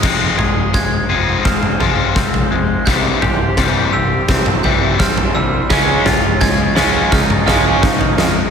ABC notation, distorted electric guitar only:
X:1
M:4/4
L:1/8
Q:1/4=85
K:Fm
V:1 name="Distorted electric guitar" clef=bass
[F,A,C] [F,A,] [F,A,] [F,A,C] [F,A,] [F,A,C] [F,A,] [F,A,] | [C,=E,G,] [C,E,] [C,E,G,] [C,E,] [C,E,] [C,E,G,] [C,E,] [C,E,] | [D,A,D] [D,A,] [D,A,] [D,A,D] [D,A,] [D,A,D] [D,A,] [D,A,] |]